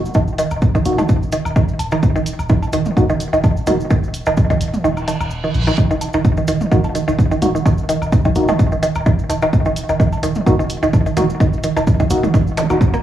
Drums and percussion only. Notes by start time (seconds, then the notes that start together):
0.06 cabasa
0.14 kick, cowbell, cabasa
0.28 cabasa
0.39 closed hi-hat, cabasa
0.51 cabasa, low woodblock
0.62 kick, cabasa
0.75 kick, cabasa
0.85 closed hi-hat, cabasa
0.98 mid tom, cowbell, cabasa
1.09 kick, cabasa
1.23 cabasa
1.32 closed hi-hat, cabasa
1.45 cabasa, low woodblock
1.56 kick, cabasa
1.68 cabasa
1.79 closed hi-hat, cowbell, cabasa
1.92 cabasa, low woodblock
2.03 kick, cabasa
2.16 cabasa
2.26 closed hi-hat, cabasa
2.39 cabasa, low woodblock
2.49 kick, cabasa
2.63 cowbell, cabasa
2.73 closed hi-hat, cabasa
2.85 mid tom, cabasa
2.97 kick, mid tom, cabasa
3.09 cabasa
3.20 closed hi-hat, cabasa
3.33 cabasa
3.43 kick, cowbell, cabasa
3.57 cabasa
3.66 closed hi-hat, mid tom, cabasa
3.80 cabasa
3.90 kick, cabasa
4.03 cabasa
4.14 closed hi-hat, cabasa
4.26 cowbell, cabasa, low woodblock
4.37 kick, cabasa
4.50 kick, cabasa
4.61 closed hi-hat, cabasa
4.73 mid tom, cabasa
4.85 cabasa
4.97 cabasa, low woodblock
5.08 closed hi-hat, cowbell, cabasa
5.20 cabasa, low woodblock
5.30 cabasa
5.44 cabasa
5.54 closed hi-hat, cabasa
5.67 cabasa, low woodblock
5.78 kick, cabasa
5.91 cabasa
6.01 closed hi-hat, cowbell, cabasa
6.13 cabasa, low woodblock
6.25 kick, cabasa
6.37 cabasa
6.48 closed hi-hat, cabasa
6.61 mid tom, cabasa
6.72 kick, mid tom, cabasa
6.84 cowbell, cabasa
6.95 closed hi-hat, cabasa
7.08 cabasa
7.19 kick, cabasa
7.31 cabasa
7.42 closed hi-hat, mid tom, cabasa
7.56 cabasa
7.65 kick, cowbell, cabasa
7.78 cabasa
7.89 closed hi-hat, cabasa
8.02 cabasa, low woodblock
8.12 kick, cabasa
8.25 kick, cabasa
8.35 closed hi-hat, cabasa
8.48 mid tom, cowbell, cabasa
8.59 kick, cabasa
8.72 cabasa
8.83 closed hi-hat, cabasa
8.95 cabasa, low woodblock
9.06 kick, cabasa
9.19 cabasa
9.29 closed hi-hat, cowbell, cabasa
9.42 cabasa, low woodblock
9.53 kick, cabasa
9.65 cabasa
9.76 closed hi-hat, cabasa
9.89 cabasa, low woodblock
10.00 kick, cabasa
10.12 cowbell, cabasa
10.23 closed hi-hat, cabasa
10.35 mid tom, cabasa
10.47 kick, mid tom, cabasa
10.60 cabasa
10.70 closed hi-hat, cabasa
10.83 cabasa
10.94 kick, cowbell, cabasa
11.06 cabasa
11.17 closed hi-hat, mid tom, cabasa
11.30 cabasa
11.40 kick, cabasa
11.53 cabasa
11.63 closed hi-hat, cabasa
11.77 cowbell, cabasa, low woodblock
11.87 kick, cabasa
12.00 kick, cabasa
12.10 closed hi-hat, cabasa
12.24 mid tom, cabasa
12.34 kick, cabasa
12.47 cabasa
12.58 closed hi-hat, cowbell, cabasa
12.70 cabasa, low woodblock
12.81 kick, cabasa
12.94 cabasa